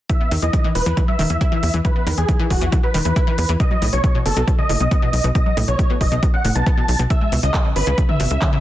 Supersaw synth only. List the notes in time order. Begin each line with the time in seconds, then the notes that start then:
0.10 E5
0.42 D#5
0.75 B4
1.08 E5
1.30 E5
1.85 B4
2.18 G#4
2.50 F#4
2.83 B4
3.05 B4
3.60 D#5
3.93 C#5
4.26 A4
4.59 D#5
4.80 D#5
5.35 D#5
5.68 C#5
6.01 D#5
6.34 F#5
6.55 A5
7.10 E5
7.43 D#5
7.76 B4
8.09 E5
8.31 E5